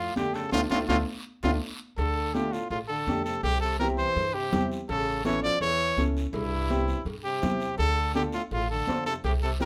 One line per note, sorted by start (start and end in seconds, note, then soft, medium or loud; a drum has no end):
0.00 0.14 A2 medium
0.00 0.14 F4 loud
0.16 0.45 F2 medium
0.16 0.36 D3 medium
0.16 0.42 A3 medium
0.16 0.42 D4 medium
0.16 0.36 G4 medium
0.16 0.42 G4 medium
0.16 high conga medium
0.16 high timbale medium
0.16 short guiro medium
0.34 0.51 C#3 medium
0.34 0.51 A4 medium
0.34 high timbale medium
0.34 short guiro medium
0.52 0.66 D2 loud
0.52 0.61 A2 medium
0.52 0.64 A3 medium
0.52 0.64 D4 medium
0.52 0.61 F4 medium
0.52 0.64 F4 medium
0.52 high conga medium
0.52 high timbale loud
0.52 long guiro loud
0.70 0.84 D2 medium
0.70 0.79 A2 medium
0.70 0.83 A3 medium
0.70 0.83 D4 medium
0.70 0.79 F4 medium
0.70 0.83 F4 medium
0.70 high conga medium
0.70 high timbale medium
0.70 long guiro loud
0.88 1.02 D2 medium
0.88 0.97 A2 loud
0.88 1.01 A3 medium
0.88 1.01 D4 medium
0.88 0.97 F4 medium
0.88 1.01 F4 loud
0.88 high conga medium
0.88 high timbale medium
0.88 long guiro loud
1.43 1.57 D2 medium
1.43 1.52 A2 medium
1.43 1.55 A3 medium
1.43 1.55 D4 medium
1.43 1.52 F4 medium
1.43 1.55 F4 medium
1.43 high conga medium
1.43 high timbale medium
1.43 long guiro loud
1.97 2.56 D2 loud
1.97 2.35 D3 medium
1.97 2.36 A4 loud
1.97 cowbell loud
1.97 high conga soft
1.97 long guiro medium
2.34 2.54 D3 medium
2.34 2.60 A3 medium
2.34 2.60 D4 medium
2.34 2.60 F4 medium
2.34 2.54 G4 medium
2.34 cowbell medium
2.34 high conga medium
2.34 short guiro medium
2.52 2.71 A2 medium
2.52 2.70 F4 medium
2.52 short guiro medium
2.70 3.00 A1 medium
2.70 2.79 A2 medium
2.70 2.79 F4 medium
2.70 cowbell medium
2.70 high conga soft
2.70 long guiro medium
2.88 3.23 D3 medium
2.88 3.22 A4 medium
3.07 3.36 F2 medium
3.07 3.33 A3 medium
3.07 3.33 D4 medium
3.07 3.33 G4 medium
3.07 cowbell medium
3.07 high conga medium
3.07 low timbale medium
3.07 short guiro medium
3.24 3.42 C3 medium
3.24 3.42 A4 medium
3.24 short guiro medium
3.43 4.01 C2 loud
3.43 3.60 C3 medium
3.43 3.60 G4 loud
3.43 cowbell loud
3.43 high conga soft
3.43 long guiro medium
3.61 3.78 C3 medium
3.61 3.78 A4 medium
3.80 3.88 E3 medium
3.80 4.05 C4 medium
3.80 4.05 E4 medium
3.80 4.06 G4 medium
3.80 3.88 A#4 medium
3.80 cowbell medium
3.80 high conga medium
3.80 short guiro medium
3.98 4.36 E3 medium
3.98 4.36 C5 loud
3.98 short guiro medium
4.16 4.45 G2 loud
4.16 cowbell medium
4.16 high conga soft
4.16 long guiro medium
4.34 4.70 C3 medium
4.34 4.70 G4 medium
4.52 4.82 E2 medium
4.52 4.78 C4 medium
4.52 4.78 E4 medium
4.52 4.78 G4 medium
4.52 cowbell medium
4.52 high conga medium
4.52 low conga loud
4.52 low timbale medium
4.52 short guiro medium
4.72 short guiro medium
4.89 5.47 A1 loud
4.89 5.23 C#3 medium
4.89 5.23 A4 medium
4.89 cowbell loud
4.89 high conga soft
4.89 long guiro medium
5.24 5.41 E3 loud
5.24 5.50 C#4 medium
5.24 5.50 E4 medium
5.24 5.51 A4 medium
5.24 5.42 C#5 medium
5.24 cowbell medium
5.24 high conga medium
5.24 short guiro medium
5.42 5.60 F3 medium
5.42 5.60 D5 loud
5.42 short guiro medium
5.60 5.90 E2 medium
5.60 6.03 E3 medium
5.60 6.04 C#5 loud
5.60 cowbell medium
5.60 high conga soft
5.60 long guiro medium
5.97 6.26 C#2 medium
5.97 6.23 C#4 medium
5.97 6.23 E4 medium
5.97 6.23 A4 medium
5.97 cowbell medium
5.97 high conga medium
5.97 short guiro medium
6.17 short guiro medium
6.33 6.91 C2 loud
6.33 7.02 G2 medium
6.33 7.03 E4 medium
6.33 cowbell loud
6.33 high conga soft
6.33 long guiro medium
6.70 6.95 C4 medium
6.70 6.95 E4 medium
6.70 6.96 G4 medium
6.70 cowbell medium
6.70 high conga medium
6.70 short guiro medium
6.88 short guiro medium
7.05 7.35 G2 medium
7.05 cowbell medium
7.05 high conga soft
7.05 long guiro medium
7.24 7.75 C3 medium
7.24 7.75 G4 medium
7.42 7.71 E2 medium
7.42 7.68 C4 medium
7.42 7.68 E4 medium
7.42 7.68 G4 medium
7.42 cowbell medium
7.42 high conga medium
7.42 low conga medium
7.42 short guiro medium
7.60 short guiro medium
7.78 8.37 D2 medium
7.78 8.13 D3 medium
7.78 8.12 A4 loud
7.78 cowbell loud
7.78 high conga soft
7.78 long guiro medium
8.14 8.24 D3 medium
8.14 8.40 D4 medium
8.14 8.40 F4 medium
8.14 8.23 G4 medium
8.14 8.41 A4 medium
8.14 cowbell medium
8.14 high conga medium
8.14 short guiro medium
8.32 8.42 A2 medium
8.32 8.42 F4 medium
8.32 short guiro medium
8.51 8.80 A1 loud
8.51 8.69 A2 medium
8.51 8.69 F4 medium
8.51 cowbell medium
8.51 high conga soft
8.51 long guiro medium
8.70 9.04 D3 medium
8.70 9.04 A4 medium
8.87 9.17 F2 medium
8.87 9.13 D4 medium
8.87 9.13 F4 medium
8.87 9.13 C5 medium
8.87 cowbell medium
8.87 high conga medium
8.87 low timbale medium
8.87 short guiro medium
9.06 9.15 C3 medium
9.06 9.14 A4 medium
9.06 short guiro medium
9.24 9.65 C2 loud
9.24 9.33 C3 medium
9.24 9.32 G4 medium
9.24 cowbell loud
9.24 high conga soft
9.24 long guiro medium
9.43 9.51 C3 medium
9.43 9.51 A4 medium
9.60 9.65 E3 medium
9.60 9.65 C4 medium
9.60 9.65 E4 medium
9.60 9.65 G4 medium
9.60 9.65 A#4 medium
9.60 cowbell medium
9.60 high conga medium
9.60 short guiro medium